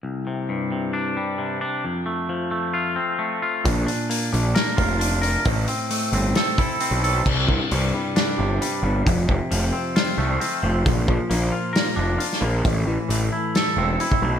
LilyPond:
<<
  \new Staff \with { instrumentName = "Clean electric guitar" } { \time 4/4 \key c \major \tempo 4 = 133 c,8 c8 g,8 c8 d'8 g8 c8 d'8 | f,8 a8 f8 a8 f'8 c'8 a8 f'8 | bes,8 d'8 bes8 d'8 bes'8 f'8 d'8 bes'8 | a,8 c'8 a8 c'8 a'8 e'8 c'8 a'8 |
c,8 g,8 g,8 g8 d'8 c8 g8 g,8 | f,8 c8 f8 c'8 f'8 a8 c'8 f8 | bes,8 f8 bes8 f'8 bes'8 d'8 f'8 bes8 | a,8 e8 a8 e'8 a'8 c'8 e'8 a8 | }
  \new Staff \with { instrumentName = "Picked electric bass" } { \clef bass \time 4/4 \key c \major r1 | r1 | bes,,8 r4 bes,,8 r8 f,,4. | a,,8 r4 g,,8 r4 r16 b,,8. |
c,8 c,16 r16 c,8 r4 g,,8 r8 g,,8 | f,,8 f,,16 r16 f,,8 r4 c,8 r8 f,,8 | bes,,8 bes,,16 r16 bes,,8 r4 f,,8 r8 bes,,8 | a,,8 a,,16 r16 a,,8 r4 e,,8 r8 b,,8 | }
  \new DrumStaff \with { instrumentName = "Drums" } \drummode { \time 4/4 r4 r4 r4 r4 | r4 r4 r4 r4 | <hho bd>8 hho8 hho8 hho8 <hho sn>8 <hho bd>8 hho8 hho8 | <hho bd>8 hho8 hho8 hho8 <hho sn>8 <hho bd>8 hho8 hho8 |
<cymc bd>8 bd8 hho4 <hho sn>4 hho4 | <hho bd>8 bd8 hho4 <hho sn>4 hho4 | <hho bd>8 bd8 hho4 <hho sn>4 hho16 sn8. | <hho bd>4 hho4 <hho sn>4 hho16 bd8. | }
>>